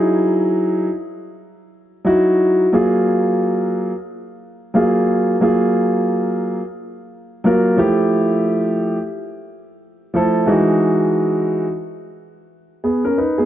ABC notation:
X:1
M:4/4
L:1/16
Q:"Swing 16ths" 1/4=89
K:F#
V:1 name="Grand piano"
[F,D=EG]4 z8 [F,DEF]4 | [F,A,EG]6 z6 [F,A,EG]4 | [F,A,EG]6 z6 [F,A,EA]2 [=F,=A,=E=G]2- | [=F,=A,=E=G]4 z8 [F,A,E=A]2 [=E,^G,D^F]2- |
[=E,G,DF]4 z8 [B,G] [CA] [DB] [B,G] |]